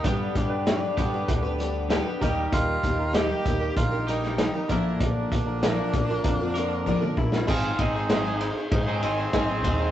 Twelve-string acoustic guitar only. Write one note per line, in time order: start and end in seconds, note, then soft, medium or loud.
0.04 0.34 G3 medium
0.04 0.35 D4 medium
0.04 0.35 G4 medium
0.04 0.36 B4 medium
0.35 0.65 G3 medium
0.35 0.66 D4 medium
0.35 0.66 G4 medium
0.35 0.67 B4 medium
0.66 0.96 G3 medium
0.66 0.97 D4 medium
0.66 0.98 G4 medium
0.66 0.99 B4 medium
0.97 1.13 G3 medium
0.97 1.14 D4 medium
0.97 1.13 G4 medium
0.97 1.12 B4 medium
1.13 1.45 D4 soft
1.13 1.44 G4 soft
1.13 1.42 B4 medium
1.43 1.59 D4 soft
1.43 1.59 G4 medium
1.43 1.59 B4 medium
1.59 1.89 G3 medium
1.59 1.90 D4 medium
1.59 1.90 G4 medium
1.59 1.91 B4 medium
1.90 2.06 G3 medium
1.90 2.06 D4 medium
1.90 2.06 G4 medium
1.90 2.05 B4 medium
2.06 2.22 D4 soft
2.06 2.22 G4 medium
2.06 2.21 B4 medium
2.22 2.84 D#3 medium
2.22 2.82 G3 medium
2.22 2.83 D#4 medium
2.22 2.84 G4 medium
2.22 2.85 A#4 medium
2.83 3.12 G3 medium
2.83 3.13 D#4 medium
2.83 3.13 G4 medium
2.83 3.14 A#4 medium
3.13 3.45 D#3 medium
3.13 3.44 G3 medium
3.13 3.45 D#4 medium
3.13 3.45 G4 medium
3.13 3.46 A#4 medium
3.45 3.61 G3 medium
3.45 3.62 D#4 medium
3.45 3.61 G4 medium
3.45 3.59 A#4 medium
3.60 3.93 D#4 soft
3.60 3.92 G4 soft
3.60 3.90 A#4 medium
3.91 4.07 D#4 soft
3.91 4.08 G4 soft
3.91 4.07 A#4 medium
4.07 4.38 G3 medium
4.07 4.38 D#4 medium
4.07 4.39 G4 medium
4.07 4.39 A#4 medium
4.39 4.54 D#3 medium
4.39 4.55 G3 medium
4.39 4.55 D#4 medium
4.39 4.54 G4 medium
4.39 4.52 A#4 medium
4.54 4.70 D#4 soft
4.54 4.70 G4 soft
4.54 4.69 A#4 soft
4.69 5.31 A#2 medium
4.69 5.32 F3 medium
4.69 5.30 A#3 medium
4.69 5.32 D4 medium
4.69 5.32 A#4 medium
5.32 5.63 A#3 medium
5.32 5.63 D4 medium
5.32 5.63 F4 medium
5.32 5.63 A#4 medium
5.63 5.94 A#2 medium
5.63 5.94 F3 medium
5.63 5.92 A#3 medium
5.63 5.93 D4 medium
5.63 5.94 F4 medium
5.63 5.95 A#4 medium
5.93 6.09 A#3 medium
5.93 6.09 D4 medium
5.93 6.09 F4 medium
5.93 6.08 A#4 medium
6.09 6.41 A#3 soft
6.09 6.41 D4 soft
6.09 6.40 F4 medium
6.09 6.39 A#4 medium
6.40 6.54 A#3 medium
6.40 6.56 D4 medium
6.40 6.56 F4 medium
6.40 6.55 A#4 medium
6.55 6.86 A#3 medium
6.55 6.86 D4 medium
6.55 6.86 F4 medium
6.55 6.87 A#4 medium
6.86 7.02 A#2 medium
6.86 7.02 F3 medium
6.86 7.02 A#3 medium
6.86 7.02 D4 medium
6.86 7.01 F4 medium
6.86 6.99 A#4 loud
7.01 7.34 A#3 soft
7.01 7.32 D4 medium
7.01 7.32 F4 medium
7.01 7.31 A#4 medium
7.32 7.47 A#3 medium
7.32 7.47 D4 medium
7.32 7.48 F4 medium
7.32 7.48 A#4 medium
7.47 7.78 G#3 medium
7.47 7.79 D#4 medium
7.47 7.79 G#4 medium
7.47 7.80 C5 medium
7.79 7.95 G#3 medium
7.79 7.95 D#4 medium
7.79 7.96 G#4 medium
7.79 7.93 C5 medium
7.95 8.09 D#4 soft
7.95 8.10 G#4 medium
7.95 8.10 C5 soft
8.09 8.25 G#3 medium
8.09 8.25 D#4 medium
8.09 8.25 G#4 medium
8.09 8.23 C5 loud
8.24 8.57 D#4 soft
8.24 8.56 G#4 medium
8.24 8.54 C5 medium
8.55 8.88 D#4 soft
8.55 8.87 G#4 soft
8.55 8.86 C5 soft
8.87 9.01 D#4 soft
8.87 9.03 G#4 soft
8.87 9.03 C5 medium
9.01 9.18 G#3 medium
9.01 9.18 D#4 medium
9.01 9.18 G#4 medium
9.01 9.16 C5 medium
9.18 9.32 D#4 soft
9.18 9.33 G#4 soft
9.18 9.33 C5 medium
9.33 9.49 G#3 medium
9.33 9.49 D#4 medium
9.33 9.49 G#4 medium
9.33 9.47 C5 medium
9.48 9.64 D#4 soft
9.48 9.65 G#4 soft
9.48 9.64 C5 soft
9.64 9.91 G#3 medium
9.64 9.91 D#4 medium
9.64 9.91 G#4 medium
9.64 9.91 C5 medium